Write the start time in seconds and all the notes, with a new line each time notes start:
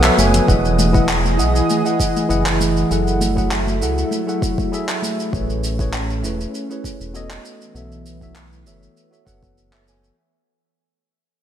Already playing: B4 D#6
0.02 B3 F#4 A4 C#5 E5, clap, low conga, shaker
0.16 F#1 B3 F#4 A4 C#5 G#5, high conga, shaker
0.34 closed hi-hat, low conga, shaker
0.46 E1 E3 E4 G#4 D#5 F#5, kick, shaker
0.65 shaker
0.79 high conga, low conga, shaker
0.92 E3 E4 G#4 D#5 F#5, kick, shaker
1.09 clap, shaker
1.25 high conga, shaker
1.37 B1 E3 E4 G#4 D#5 F#5, shaker
1.56 shaker
1.70 high conga, shaker
1.84 E3 E4 G#4 D#5 F#5, shaker
2.00 kick, shaker
2.16 high conga, shaker
2.29 F#1 E3 E4 G#4 D#5 F#5, shaker
2.46 clap, shaker
2.60 high conga, shaker
2.77 shaker
2.90 F#1 F#3 A3 E4 G#4 A4 F#5, shaker
3.07 shaker
3.21 high conga, low conga, shaker
3.35 F#3 E4 G#4 A4 F#5, kick, shaker
3.51 clap, shaker
3.67 high conga, shaker
3.80 C#2 F#3 E4 G#4 A4 F#5, shaker
3.98 shaker
4.11 high conga, shaker
4.26 F#3 E4 G#4 A4 F#5, shaker
4.42 kick, shaker
4.58 kick, high conga, shaker
4.72 F#3 E4 G#4 A4 E5, shaker
4.89 clap, shaker
5.02 high conga, shaker
5.20 shaker
5.33 A1 A3 C#4 E4 G#4 B4 C#5, kick, shaker
5.50 shaker
5.64 shaker
5.79 A3 E4 G#4 B4 C#5, kick, shaker
5.94 clap, shaker
6.10 shaker
6.23 E1 A3 E4 G#4 B4 C#5, shaker
6.41 shaker
6.55 shaker
6.70 A3 E4 G#4 B4 C#5, shaker
6.84 kick, shaker
7.00 E1, shaker
7.14 B3 F#4 A4 C#5 D#5, shaker
7.31 clap, shaker
7.44 E3 B3, shaker
7.61 shaker
7.75 B1 B3 F#4 A4 C#5 E5, shaker
7.92 shaker
8.06 shaker
8.21 B3 F#4 A4 C#5 E5, kick, shaker
8.36 clap, shaker
8.52 shaker
8.65 F#1 B3 F#4 A4 C#5 E5, shaker
8.83 shaker
8.97 shaker
9.10 B3 F#4 A4 C#5 E5, shaker
9.25 F#1 B3 F#4 A4 C#5 F#5, kick, shaker
9.43 kick, shaker
9.58 shaker
9.71 B3 F#4 A4 C#5 E5, clap, shaker
9.86 B3 F#4 A4 C#5 G#5, shaker
10.04 shaker